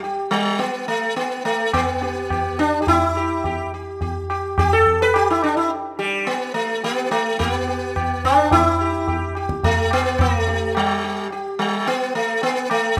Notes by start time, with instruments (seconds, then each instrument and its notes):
0.03 sitar G4, tabla tin
0.31 sitar G3
0.59 sitar B3, tabla tin
0.88 sitar A3
1.16 sitar B3, tabla tin
1.45 sitar A3, tabla na
1.73 sitar B3, tabla na, tabla ge
2.02 sitar G4, tabla te
2.30 sitar G4, tabla na, tabla ge
2.59 sitar D4, tabla te
2.82 sitar G4
2.87 sitar E4, tabla tin, tabla ge
3.17 sitar G4
3.44 sitar G4, tabla tin, tabla ge
3.74 sitar G4
4.01 sitar G4, tabla tin, tabla ge
4.30 sitar G4, tabla na
4.58 sitar G4, tabla na, tabla ge
4.73 sitar A4
4.86 tabla ge
5.02 sitar B4
5.14 sitar G4, tabla na
5.30 sitar E4
5.42 sitar D4, tabla na
5.57 sitar E4
5.71 tabla tin
5.99 sitar G3 G4
6.27 sitar B3, tabla tin
6.54 sitar A3
6.84 sitar B3 G4, tabla tin
7.11 sitar A3, tabla na
7.39 sitar A#3 G4, tabla na, tabla ge
7.54 sitar B3
7.68 sitar G4
7.96 tabla na, tabla ge
8.24 sitar D4, tabla ge
8.51 sitar E4, tabla tin, tabla ge
8.81 sitar G4
9.08 sitar G4, tabla tin, tabla ge
9.35 sitar G4, tabla na
9.49 tabla ke
9.63 sitar A3, tabla tin, tabla ge
9.91 sitar B3, tabla na
10.19 sitar A#3, tabla na, tabla ge
10.36 sitar A3
10.47 sitar G4, tabla te
10.75 sitar G3, tabla na
11.04 sitar G4
11.30 sitar G4, tabla tin
11.59 sitar G3
11.86 sitar B3, tabla tin
12.15 sitar A3
12.42 sitar B3, tabla tin
12.70 sitar A3, tabla na